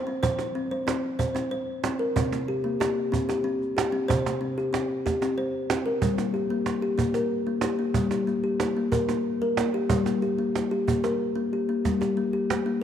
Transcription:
0.00 0.19 F3 medium
0.07 0.23 C4 medium
0.23 2.12 F3 medium
0.23 0.55 C5 medium
0.23 cajon bass medium
0.39 cajon slap soft
0.55 0.71 C4 medium
0.71 0.87 C5 medium
0.87 1.19 C4 medium
0.87 cajon slap medium
1.19 1.35 C5 medium
1.19 cajon bass soft
1.35 1.51 C4 medium
1.35 cajon slap soft
1.51 1.83 C5 medium
1.84 2.00 C4 medium
1.84 cajon slap medium
1.99 2.15 A#4 medium
2.16 4.05 C3 medium
2.16 2.48 C4 medium
2.16 cajon bass medium
2.32 cajon slap soft
2.48 2.64 G4 medium
2.64 2.80 A#3 medium
2.80 3.12 G4 medium
2.80 cajon slap medium
3.12 3.28 C4 medium
3.12 cajon bass soft
3.29 3.45 G4 medium
3.29 cajon slap soft
3.44 3.76 C4 medium
3.62 cajon slap soft
3.77 3.93 G4 medium
3.77 cajon slap medium
3.92 4.08 C4 medium
4.08 5.98 C3 medium
4.08 4.41 C5 medium
4.08 cajon bass medium
4.26 cajon slap soft
4.41 4.57 C4 medium
4.58 4.73 G4 medium
4.58 cajon slap soft
4.73 5.05 C4 medium
4.73 cajon slap medium
5.06 5.22 G4 medium
5.06 cajon bass medium
5.06 cajon slap soft
5.22 5.38 C4 medium
5.22 cajon slap soft
5.38 5.70 C5 medium
5.70 5.86 C4 medium
5.70 cajon slap medium
5.86 6.02 A#4 medium
6.02 7.92 G3 medium
6.02 cajon bass medium
6.18 6.34 A#3 medium
6.18 cajon slap soft
6.34 6.50 G4 medium
6.34 cajon slap soft
6.50 6.83 A#3 medium
6.66 cajon slap medium
6.82 6.99 G4 medium
6.98 7.14 A#3 medium
6.98 cajon bass medium
7.14 7.47 A#4 medium
7.14 cajon slap soft
7.46 7.63 A#3 medium
7.46 cajon slap soft
7.61 7.79 G4 medium
7.61 cajon slap medium
7.79 8.12 A#3 medium
7.94 9.86 G3 medium
7.94 cajon bass medium
8.11 8.28 G4 medium
8.11 cajon slap soft
8.27 8.44 A#3 medium
8.27 cajon slap soft
8.44 8.76 G4 medium
8.60 cajon slap medium
8.77 8.93 A#3 medium
8.92 9.08 A#4 medium
8.92 cajon bass soft
9.09 9.41 A#3 medium
9.09 cajon slap soft
9.41 9.58 A#4 medium
9.41 cajon slap soft
9.57 9.74 A#3 medium
9.57 cajon slap medium
9.74 9.90 G4 medium
9.89 11.80 G3 medium
9.89 cajon bass medium
10.06 10.22 A#3 medium
10.06 cajon slap soft
10.22 10.39 G4 medium
10.22 cajon slap soft
10.39 10.71 A#3 medium
10.55 cajon slap soft
10.71 10.87 G4 medium
10.88 11.04 A#3 medium
10.88 cajon bass medium
11.04 11.36 A#4 medium
11.04 cajon slap soft
11.35 11.52 A#3 medium
11.35 cajon slap soft
11.53 11.69 G4 medium
11.69 12.01 A#3 medium
11.85 12.83 G3 medium
11.85 cajon bass medium
11.85 cajon slap soft
12.01 12.17 G4 medium
12.01 cajon slap soft
12.17 12.33 A#3 medium
12.33 12.66 G4 medium
12.50 cajon slap medium
12.66 12.82 A#3 medium
12.66 cajon slap soft

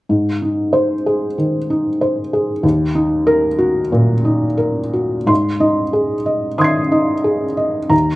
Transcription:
0.09 1.35 G#2 soft
0.42 0.94 D#4 soft
0.73 1.25 C5 medium
1.06 1.57 G#4 soft
1.38 1.88 D#3 soft
1.70 2.20 D#4 soft
2.01 2.51 C5 soft
2.33 2.64 G#4 soft
2.63 3.89 D#2 medium
2.95 3.47 D#4 medium
3.27 3.80 A#4 medium
3.59 4.12 F#4 medium
3.92 4.46 A#2 soft
4.25 4.80 D#4 soft
4.58 5.15 A#4 soft
4.93 5.29 F#4 soft
5.26 6.56 G#2 soft
5.26 5.82 C6 medium
5.60 6.15 D#4 soft
5.60 6.15 D#5 soft
5.93 6.47 G#4 soft
6.26 6.80 D#5 soft
6.58 7.12 D#3 soft
6.58 7.12 C6 medium
6.58 7.87 D#6 soft
6.58 7.88 G#6 soft
6.64 7.90 C7 soft
6.92 7.45 D#4 soft
6.92 7.45 D#5 soft
7.24 7.78 G#4 soft
7.57 7.91 D#5 soft
7.90 8.16 D#2 soft
7.90 8.16 A#5 medium

